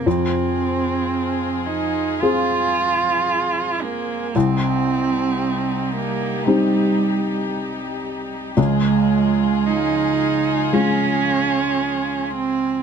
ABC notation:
X:1
M:4/4
L:1/8
Q:1/4=56
K:Fm
V:1 name="String section"
[F,FA]8 | [G,EG]8 | [F,FA]8 |]
V:2 name="Cello"
C3 E F3 B, | C3 B, G,2 z2 | A,2 E2 D3 C |]
V:3 name="Felt piano"
F,,4 [CFA]4 | C,,4 [CEG]4 | D,,4 [A,F]4 |]